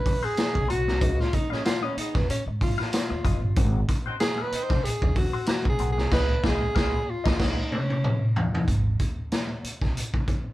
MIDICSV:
0, 0, Header, 1, 8, 480
1, 0, Start_track
1, 0, Tempo, 638978
1, 759, Time_signature, 4, 2, 24, 8
1, 7913, End_track
2, 0, Start_track
2, 0, Title_t, "Clean electric guitar"
2, 0, Program_c, 0, 27
2, 170, Note_on_c, 0, 72, 77
2, 179, Note_on_c, 0, 66, 73
2, 185, Note_on_c, 0, 60, 66
2, 267, Note_off_c, 0, 60, 0
2, 270, Note_off_c, 0, 66, 0
2, 281, Note_off_c, 0, 72, 0
2, 514, Note_on_c, 0, 60, 82
2, 523, Note_on_c, 0, 66, 99
2, 525, Note_on_c, 0, 70, 86
2, 638, Note_off_c, 0, 70, 0
2, 647, Note_off_c, 0, 66, 0
2, 687, Note_off_c, 0, 60, 0
2, 755, Note_on_c, 0, 65, 89
2, 760, Note_on_c, 0, 71, 92
2, 767, Note_on_c, 0, 75, 99
2, 927, Note_off_c, 0, 65, 0
2, 930, Note_off_c, 0, 71, 0
2, 933, Note_off_c, 0, 75, 0
2, 1128, Note_on_c, 0, 77, 69
2, 1135, Note_on_c, 0, 71, 55
2, 1144, Note_on_c, 0, 65, 59
2, 1225, Note_off_c, 0, 65, 0
2, 1231, Note_off_c, 0, 71, 0
2, 1239, Note_off_c, 0, 77, 0
2, 1372, Note_on_c, 0, 75, 77
2, 1384, Note_on_c, 0, 71, 66
2, 1389, Note_on_c, 0, 65, 64
2, 1475, Note_off_c, 0, 65, 0
2, 1482, Note_off_c, 0, 71, 0
2, 1487, Note_off_c, 0, 75, 0
2, 2088, Note_on_c, 0, 77, 84
2, 2097, Note_on_c, 0, 71, 74
2, 2106, Note_on_c, 0, 65, 64
2, 2192, Note_off_c, 0, 65, 0
2, 2199, Note_off_c, 0, 71, 0
2, 2209, Note_off_c, 0, 77, 0
2, 2437, Note_on_c, 0, 65, 96
2, 2443, Note_on_c, 0, 71, 84
2, 2448, Note_on_c, 0, 75, 101
2, 2562, Note_off_c, 0, 75, 0
2, 2575, Note_off_c, 0, 71, 0
2, 2608, Note_off_c, 0, 65, 0
2, 2683, Note_on_c, 0, 60, 94
2, 2687, Note_on_c, 0, 66, 87
2, 2693, Note_on_c, 0, 70, 84
2, 2850, Note_off_c, 0, 60, 0
2, 2853, Note_off_c, 0, 66, 0
2, 2856, Note_off_c, 0, 70, 0
2, 3049, Note_on_c, 0, 72, 56
2, 3057, Note_on_c, 0, 66, 57
2, 3064, Note_on_c, 0, 60, 44
2, 3152, Note_off_c, 0, 60, 0
2, 3157, Note_off_c, 0, 66, 0
2, 3162, Note_off_c, 0, 72, 0
2, 3289, Note_on_c, 0, 70, 84
2, 3295, Note_on_c, 0, 66, 67
2, 3303, Note_on_c, 0, 60, 67
2, 3391, Note_off_c, 0, 60, 0
2, 3395, Note_off_c, 0, 66, 0
2, 3398, Note_off_c, 0, 70, 0
2, 4007, Note_on_c, 0, 72, 72
2, 4014, Note_on_c, 0, 66, 76
2, 4023, Note_on_c, 0, 60, 63
2, 4113, Note_off_c, 0, 60, 0
2, 4121, Note_off_c, 0, 66, 0
2, 4130, Note_off_c, 0, 72, 0
2, 4356, Note_on_c, 0, 60, 92
2, 4366, Note_on_c, 0, 66, 89
2, 4368, Note_on_c, 0, 70, 81
2, 4485, Note_off_c, 0, 70, 0
2, 4493, Note_off_c, 0, 66, 0
2, 4527, Note_off_c, 0, 60, 0
2, 4593, Note_on_c, 0, 65, 102
2, 4601, Note_on_c, 0, 71, 88
2, 4604, Note_on_c, 0, 75, 109
2, 4763, Note_off_c, 0, 65, 0
2, 4768, Note_off_c, 0, 71, 0
2, 4769, Note_off_c, 0, 75, 0
2, 4833, Note_on_c, 0, 77, 93
2, 4839, Note_on_c, 0, 71, 98
2, 4845, Note_on_c, 0, 65, 99
2, 5003, Note_off_c, 0, 77, 0
2, 5006, Note_off_c, 0, 71, 0
2, 5010, Note_off_c, 0, 65, 0
2, 5070, Note_on_c, 0, 77, 102
2, 5080, Note_on_c, 0, 71, 99
2, 5082, Note_on_c, 0, 65, 98
2, 5241, Note_off_c, 0, 77, 0
2, 5247, Note_off_c, 0, 71, 0
2, 5248, Note_off_c, 0, 65, 0
2, 5439, Note_on_c, 0, 75, 90
2, 5446, Note_on_c, 0, 71, 98
2, 5451, Note_on_c, 0, 65, 99
2, 5534, Note_off_c, 0, 75, 0
2, 5538, Note_off_c, 0, 71, 0
2, 5541, Note_off_c, 0, 65, 0
2, 5554, Note_on_c, 0, 75, 95
2, 5562, Note_on_c, 0, 71, 101
2, 5567, Note_on_c, 0, 65, 87
2, 5724, Note_off_c, 0, 75, 0
2, 5728, Note_off_c, 0, 71, 0
2, 5731, Note_off_c, 0, 65, 0
2, 7913, End_track
3, 0, Start_track
3, 0, Title_t, "Tenor saxophone"
3, 0, Program_c, 1, 66
3, 0, Note_on_c, 1, 71, 96
3, 182, Note_on_c, 1, 68, 114
3, 194, Note_off_c, 1, 71, 0
3, 523, Note_off_c, 1, 68, 0
3, 527, Note_on_c, 1, 66, 102
3, 901, Note_on_c, 1, 65, 103
3, 913, Note_off_c, 1, 66, 0
3, 1007, Note_on_c, 1, 63, 97
3, 1018, Note_off_c, 1, 65, 0
3, 1142, Note_on_c, 1, 61, 83
3, 1153, Note_off_c, 1, 63, 0
3, 1235, Note_off_c, 1, 61, 0
3, 1240, Note_on_c, 1, 65, 104
3, 1380, Note_on_c, 1, 61, 89
3, 1391, Note_off_c, 1, 65, 0
3, 1489, Note_on_c, 1, 63, 84
3, 1500, Note_off_c, 1, 61, 0
3, 1617, Note_on_c, 1, 59, 89
3, 1629, Note_off_c, 1, 63, 0
3, 1721, Note_off_c, 1, 59, 0
3, 1726, Note_on_c, 1, 61, 78
3, 1832, Note_off_c, 1, 61, 0
3, 1973, Note_on_c, 1, 65, 89
3, 2091, Note_off_c, 1, 65, 0
3, 2103, Note_on_c, 1, 65, 82
3, 2787, Note_off_c, 1, 65, 0
3, 3155, Note_on_c, 1, 68, 111
3, 3319, Note_on_c, 1, 71, 103
3, 3331, Note_off_c, 1, 68, 0
3, 3476, Note_on_c, 1, 72, 116
3, 3487, Note_off_c, 1, 71, 0
3, 3632, Note_on_c, 1, 68, 98
3, 3644, Note_off_c, 1, 72, 0
3, 3875, Note_off_c, 1, 68, 0
3, 3882, Note_on_c, 1, 66, 94
3, 4103, Note_off_c, 1, 66, 0
3, 4119, Note_on_c, 1, 66, 93
3, 4267, Note_off_c, 1, 66, 0
3, 4277, Note_on_c, 1, 68, 95
3, 4426, Note_off_c, 1, 68, 0
3, 4446, Note_on_c, 1, 68, 92
3, 4590, Note_off_c, 1, 68, 0
3, 4604, Note_on_c, 1, 71, 115
3, 4849, Note_on_c, 1, 68, 106
3, 4860, Note_off_c, 1, 71, 0
3, 5333, Note_on_c, 1, 65, 89
3, 5344, Note_off_c, 1, 68, 0
3, 5572, Note_on_c, 1, 63, 86
3, 5583, Note_off_c, 1, 65, 0
3, 5805, Note_off_c, 1, 63, 0
3, 5808, Note_on_c, 1, 61, 90
3, 6254, Note_off_c, 1, 61, 0
3, 7913, End_track
4, 0, Start_track
4, 0, Title_t, "Horn section"
4, 0, Program_c, 2, 61
4, 1139, Note_on_c, 2, 59, 88
4, 1139, Note_on_c, 2, 68, 89
4, 1141, Note_on_c, 2, 63, 90
4, 1141, Note_on_c, 2, 75, 98
4, 1205, Note_off_c, 2, 59, 0
4, 1205, Note_off_c, 2, 68, 0
4, 1206, Note_off_c, 2, 63, 0
4, 1206, Note_off_c, 2, 75, 0
4, 1484, Note_on_c, 2, 68, 91
4, 1488, Note_on_c, 2, 63, 90
4, 1488, Note_on_c, 2, 75, 98
4, 1489, Note_on_c, 2, 59, 102
4, 1635, Note_off_c, 2, 68, 0
4, 1638, Note_off_c, 2, 59, 0
4, 1638, Note_off_c, 2, 63, 0
4, 1638, Note_off_c, 2, 75, 0
4, 3046, Note_on_c, 2, 60, 93
4, 3046, Note_on_c, 2, 72, 101
4, 3047, Note_on_c, 2, 63, 85
4, 3050, Note_on_c, 2, 54, 86
4, 3115, Note_off_c, 2, 60, 0
4, 3115, Note_off_c, 2, 72, 0
4, 3116, Note_off_c, 2, 63, 0
4, 3118, Note_off_c, 2, 54, 0
4, 3392, Note_on_c, 2, 60, 91
4, 3393, Note_on_c, 2, 70, 88
4, 3394, Note_on_c, 2, 63, 100
4, 3394, Note_on_c, 2, 75, 108
4, 3712, Note_off_c, 2, 60, 0
4, 3713, Note_off_c, 2, 70, 0
4, 3714, Note_off_c, 2, 63, 0
4, 3714, Note_off_c, 2, 75, 0
4, 4591, Note_on_c, 2, 59, 107
4, 4592, Note_on_c, 2, 63, 101
4, 4592, Note_on_c, 2, 75, 110
4, 4595, Note_on_c, 2, 68, 104
4, 4719, Note_off_c, 2, 59, 0
4, 4719, Note_off_c, 2, 63, 0
4, 4719, Note_off_c, 2, 75, 0
4, 4721, Note_off_c, 2, 68, 0
4, 4837, Note_on_c, 2, 68, 109
4, 4838, Note_on_c, 2, 59, 99
4, 4839, Note_on_c, 2, 63, 94
4, 4839, Note_on_c, 2, 75, 102
4, 4963, Note_off_c, 2, 68, 0
4, 4964, Note_off_c, 2, 59, 0
4, 4964, Note_off_c, 2, 63, 0
4, 4964, Note_off_c, 2, 75, 0
4, 5075, Note_on_c, 2, 59, 106
4, 5078, Note_on_c, 2, 63, 93
4, 5078, Note_on_c, 2, 68, 104
4, 5078, Note_on_c, 2, 75, 101
4, 5202, Note_off_c, 2, 59, 0
4, 5203, Note_off_c, 2, 63, 0
4, 5203, Note_off_c, 2, 68, 0
4, 5203, Note_off_c, 2, 75, 0
4, 5443, Note_on_c, 2, 63, 90
4, 5443, Note_on_c, 2, 75, 98
4, 5446, Note_on_c, 2, 59, 100
4, 5447, Note_on_c, 2, 68, 104
4, 5513, Note_off_c, 2, 63, 0
4, 5513, Note_off_c, 2, 75, 0
4, 5515, Note_off_c, 2, 59, 0
4, 5516, Note_off_c, 2, 68, 0
4, 5553, Note_on_c, 2, 59, 104
4, 5554, Note_on_c, 2, 63, 80
4, 5554, Note_on_c, 2, 75, 87
4, 5555, Note_on_c, 2, 68, 88
4, 5681, Note_off_c, 2, 59, 0
4, 5681, Note_off_c, 2, 63, 0
4, 5681, Note_off_c, 2, 75, 0
4, 5682, Note_off_c, 2, 68, 0
4, 7913, End_track
5, 0, Start_track
5, 0, Title_t, "Upright bass"
5, 0, Program_c, 3, 32
5, 0, Note_on_c, 3, 39, 80
5, 120, Note_off_c, 3, 39, 0
5, 414, Note_on_c, 3, 35, 77
5, 495, Note_off_c, 3, 35, 0
5, 525, Note_on_c, 3, 35, 82
5, 659, Note_off_c, 3, 35, 0
5, 659, Note_on_c, 3, 36, 81
5, 763, Note_off_c, 3, 36, 0
5, 763, Note_on_c, 3, 37, 120
5, 945, Note_off_c, 3, 37, 0
5, 1614, Note_on_c, 3, 41, 97
5, 1694, Note_off_c, 3, 41, 0
5, 1849, Note_on_c, 3, 44, 90
5, 2034, Note_off_c, 3, 44, 0
5, 2330, Note_on_c, 3, 39, 80
5, 2412, Note_off_c, 3, 39, 0
5, 2437, Note_on_c, 3, 30, 88
5, 2540, Note_off_c, 3, 30, 0
5, 2568, Note_on_c, 3, 31, 83
5, 2650, Note_off_c, 3, 31, 0
5, 2679, Note_on_c, 3, 32, 113
5, 2862, Note_off_c, 3, 32, 0
5, 3531, Note_on_c, 3, 36, 86
5, 3612, Note_off_c, 3, 36, 0
5, 3770, Note_on_c, 3, 39, 84
5, 3954, Note_off_c, 3, 39, 0
5, 4246, Note_on_c, 3, 35, 84
5, 4329, Note_off_c, 3, 35, 0
5, 4350, Note_on_c, 3, 35, 84
5, 4487, Note_off_c, 3, 35, 0
5, 4487, Note_on_c, 3, 36, 87
5, 4569, Note_off_c, 3, 36, 0
5, 4593, Note_on_c, 3, 37, 114
5, 4763, Note_off_c, 3, 37, 0
5, 4836, Note_on_c, 3, 37, 107
5, 5004, Note_off_c, 3, 37, 0
5, 5073, Note_on_c, 3, 37, 89
5, 5243, Note_off_c, 3, 37, 0
5, 5450, Note_on_c, 3, 37, 116
5, 5541, Note_off_c, 3, 37, 0
5, 5556, Note_on_c, 3, 37, 103
5, 5725, Note_off_c, 3, 37, 0
5, 6519, Note_on_c, 3, 32, 99
5, 6703, Note_off_c, 3, 32, 0
5, 7372, Note_on_c, 3, 36, 78
5, 7455, Note_off_c, 3, 36, 0
5, 7614, Note_on_c, 3, 39, 77
5, 7799, Note_off_c, 3, 39, 0
5, 7913, End_track
6, 0, Start_track
6, 0, Title_t, "Muted clean electric guitar strokes"
6, 276, Note_on_c, 9, 29, 36
6, 351, Note_off_c, 9, 29, 0
6, 409, Note_on_c, 9, 29, 48
6, 484, Note_off_c, 9, 29, 0
6, 647, Note_on_c, 9, 29, 37
6, 723, Note_off_c, 9, 29, 0
6, 997, Note_on_c, 9, 29, 41
6, 1072, Note_off_c, 9, 29, 0
6, 1234, Note_on_c, 9, 29, 47
6, 1309, Note_off_c, 9, 29, 0
6, 1484, Note_on_c, 9, 29, 35
6, 1559, Note_off_c, 9, 29, 0
6, 1624, Note_on_c, 9, 29, 41
6, 1699, Note_off_c, 9, 29, 0
6, 1723, Note_on_c, 9, 29, 40
6, 1798, Note_off_c, 9, 29, 0
6, 1861, Note_on_c, 9, 29, 44
6, 1936, Note_off_c, 9, 29, 0
6, 2201, Note_on_c, 9, 29, 33
6, 2276, Note_off_c, 9, 29, 0
6, 2330, Note_on_c, 9, 29, 60
6, 2405, Note_off_c, 9, 29, 0
6, 2571, Note_on_c, 9, 29, 55
6, 2646, Note_off_c, 9, 29, 0
6, 2925, Note_on_c, 9, 29, 41
6, 3000, Note_off_c, 9, 29, 0
6, 3400, Note_on_c, 9, 29, 45
6, 3475, Note_off_c, 9, 29, 0
6, 3529, Note_on_c, 9, 29, 52
6, 3604, Note_off_c, 9, 29, 0
6, 3639, Note_on_c, 9, 29, 48
6, 3714, Note_off_c, 9, 29, 0
6, 3775, Note_on_c, 9, 29, 43
6, 3850, Note_off_c, 9, 29, 0
6, 4252, Note_on_c, 9, 29, 52
6, 4327, Note_off_c, 9, 29, 0
6, 4494, Note_on_c, 9, 29, 42
6, 4569, Note_off_c, 9, 29, 0
6, 7913, End_track
7, 0, Start_track
7, 0, Title_t, "Muted upright bass strokes"
7, 1137, Note_on_c, 9, 29, 44
7, 1212, Note_off_c, 9, 29, 0
7, 1476, Note_on_c, 9, 29, 45
7, 1551, Note_off_c, 9, 29, 0
7, 1723, Note_on_c, 9, 29, 45
7, 1798, Note_off_c, 9, 29, 0
7, 3049, Note_on_c, 9, 29, 43
7, 3124, Note_off_c, 9, 29, 0
7, 3393, Note_on_c, 9, 29, 43
7, 3469, Note_off_c, 9, 29, 0
7, 3631, Note_on_c, 9, 29, 44
7, 3706, Note_off_c, 9, 29, 0
7, 6891, Note_on_c, 9, 29, 37
7, 6966, Note_off_c, 9, 29, 0
7, 7237, Note_on_c, 9, 29, 38
7, 7312, Note_off_c, 9, 29, 0
7, 7476, Note_on_c, 9, 29, 42
7, 7551, Note_off_c, 9, 29, 0
7, 7913, End_track
8, 0, Start_track
8, 0, Title_t, "Drums"
8, 43, Note_on_c, 9, 36, 102
8, 45, Note_on_c, 9, 46, 61
8, 119, Note_off_c, 9, 36, 0
8, 120, Note_off_c, 9, 46, 0
8, 279, Note_on_c, 9, 42, 96
8, 286, Note_on_c, 9, 38, 110
8, 354, Note_off_c, 9, 42, 0
8, 362, Note_off_c, 9, 38, 0
8, 415, Note_on_c, 9, 36, 91
8, 490, Note_off_c, 9, 36, 0
8, 524, Note_on_c, 9, 42, 71
8, 599, Note_off_c, 9, 42, 0
8, 660, Note_on_c, 9, 38, 44
8, 735, Note_off_c, 9, 38, 0
8, 761, Note_on_c, 9, 42, 88
8, 762, Note_on_c, 9, 36, 112
8, 836, Note_off_c, 9, 42, 0
8, 837, Note_off_c, 9, 36, 0
8, 901, Note_on_c, 9, 38, 36
8, 976, Note_off_c, 9, 38, 0
8, 998, Note_on_c, 9, 42, 70
8, 1002, Note_on_c, 9, 36, 85
8, 1073, Note_off_c, 9, 42, 0
8, 1077, Note_off_c, 9, 36, 0
8, 1141, Note_on_c, 9, 38, 37
8, 1216, Note_off_c, 9, 38, 0
8, 1242, Note_on_c, 9, 42, 90
8, 1247, Note_on_c, 9, 38, 127
8, 1317, Note_off_c, 9, 42, 0
8, 1322, Note_off_c, 9, 38, 0
8, 1484, Note_on_c, 9, 42, 93
8, 1559, Note_off_c, 9, 42, 0
8, 1615, Note_on_c, 9, 36, 100
8, 1619, Note_on_c, 9, 38, 41
8, 1690, Note_off_c, 9, 36, 0
8, 1694, Note_off_c, 9, 38, 0
8, 1725, Note_on_c, 9, 42, 96
8, 1800, Note_off_c, 9, 42, 0
8, 1962, Note_on_c, 9, 36, 89
8, 1966, Note_on_c, 9, 46, 57
8, 2037, Note_off_c, 9, 36, 0
8, 2041, Note_off_c, 9, 46, 0
8, 2102, Note_on_c, 9, 38, 35
8, 2177, Note_off_c, 9, 38, 0
8, 2198, Note_on_c, 9, 42, 109
8, 2206, Note_on_c, 9, 38, 121
8, 2273, Note_off_c, 9, 42, 0
8, 2281, Note_off_c, 9, 38, 0
8, 2438, Note_on_c, 9, 36, 92
8, 2440, Note_on_c, 9, 42, 63
8, 2514, Note_off_c, 9, 36, 0
8, 2515, Note_off_c, 9, 42, 0
8, 2676, Note_on_c, 9, 42, 92
8, 2679, Note_on_c, 9, 36, 111
8, 2751, Note_off_c, 9, 42, 0
8, 2754, Note_off_c, 9, 36, 0
8, 2917, Note_on_c, 9, 42, 76
8, 2920, Note_on_c, 9, 36, 88
8, 2992, Note_off_c, 9, 42, 0
8, 2995, Note_off_c, 9, 36, 0
8, 3155, Note_on_c, 9, 42, 93
8, 3159, Note_on_c, 9, 38, 118
8, 3230, Note_off_c, 9, 42, 0
8, 3234, Note_off_c, 9, 38, 0
8, 3398, Note_on_c, 9, 42, 85
8, 3473, Note_off_c, 9, 42, 0
8, 3531, Note_on_c, 9, 36, 109
8, 3533, Note_on_c, 9, 38, 43
8, 3606, Note_off_c, 9, 36, 0
8, 3608, Note_off_c, 9, 38, 0
8, 3644, Note_on_c, 9, 42, 101
8, 3720, Note_off_c, 9, 42, 0
8, 3771, Note_on_c, 9, 36, 103
8, 3846, Note_off_c, 9, 36, 0
8, 3871, Note_on_c, 9, 46, 62
8, 3876, Note_on_c, 9, 36, 92
8, 3947, Note_off_c, 9, 46, 0
8, 3951, Note_off_c, 9, 36, 0
8, 4104, Note_on_c, 9, 42, 105
8, 4112, Note_on_c, 9, 38, 106
8, 4179, Note_off_c, 9, 42, 0
8, 4187, Note_off_c, 9, 38, 0
8, 4247, Note_on_c, 9, 36, 94
8, 4322, Note_off_c, 9, 36, 0
8, 4346, Note_on_c, 9, 42, 65
8, 4421, Note_off_c, 9, 42, 0
8, 4491, Note_on_c, 9, 38, 43
8, 4566, Note_off_c, 9, 38, 0
8, 4594, Note_on_c, 9, 49, 87
8, 4595, Note_on_c, 9, 36, 108
8, 4597, Note_on_c, 9, 38, 112
8, 4669, Note_off_c, 9, 49, 0
8, 4670, Note_off_c, 9, 36, 0
8, 4672, Note_off_c, 9, 38, 0
8, 4835, Note_on_c, 9, 36, 107
8, 4837, Note_on_c, 9, 38, 117
8, 4910, Note_off_c, 9, 36, 0
8, 4912, Note_off_c, 9, 38, 0
8, 5076, Note_on_c, 9, 36, 112
8, 5080, Note_on_c, 9, 38, 105
8, 5151, Note_off_c, 9, 36, 0
8, 5155, Note_off_c, 9, 38, 0
8, 5450, Note_on_c, 9, 36, 116
8, 5455, Note_on_c, 9, 38, 119
8, 5526, Note_off_c, 9, 36, 0
8, 5530, Note_off_c, 9, 38, 0
8, 5555, Note_on_c, 9, 49, 92
8, 5556, Note_on_c, 9, 36, 116
8, 5558, Note_on_c, 9, 38, 111
8, 5630, Note_off_c, 9, 49, 0
8, 5631, Note_off_c, 9, 36, 0
8, 5633, Note_off_c, 9, 38, 0
8, 5800, Note_on_c, 9, 48, 72
8, 5875, Note_off_c, 9, 48, 0
8, 5935, Note_on_c, 9, 48, 68
8, 6010, Note_off_c, 9, 48, 0
8, 6041, Note_on_c, 9, 47, 90
8, 6116, Note_off_c, 9, 47, 0
8, 6282, Note_on_c, 9, 43, 108
8, 6357, Note_off_c, 9, 43, 0
8, 6420, Note_on_c, 9, 43, 105
8, 6495, Note_off_c, 9, 43, 0
8, 6518, Note_on_c, 9, 36, 88
8, 6519, Note_on_c, 9, 42, 84
8, 6594, Note_off_c, 9, 36, 0
8, 6594, Note_off_c, 9, 42, 0
8, 6756, Note_on_c, 9, 42, 71
8, 6760, Note_on_c, 9, 36, 74
8, 6831, Note_off_c, 9, 42, 0
8, 6835, Note_off_c, 9, 36, 0
8, 6998, Note_on_c, 9, 42, 76
8, 7003, Note_on_c, 9, 38, 104
8, 7074, Note_off_c, 9, 42, 0
8, 7078, Note_off_c, 9, 38, 0
8, 7245, Note_on_c, 9, 42, 80
8, 7320, Note_off_c, 9, 42, 0
8, 7373, Note_on_c, 9, 36, 88
8, 7377, Note_on_c, 9, 38, 35
8, 7449, Note_off_c, 9, 36, 0
8, 7452, Note_off_c, 9, 38, 0
8, 7489, Note_on_c, 9, 42, 92
8, 7564, Note_off_c, 9, 42, 0
8, 7615, Note_on_c, 9, 36, 93
8, 7690, Note_off_c, 9, 36, 0
8, 7719, Note_on_c, 9, 42, 50
8, 7721, Note_on_c, 9, 36, 81
8, 7794, Note_off_c, 9, 42, 0
8, 7796, Note_off_c, 9, 36, 0
8, 7913, End_track
0, 0, End_of_file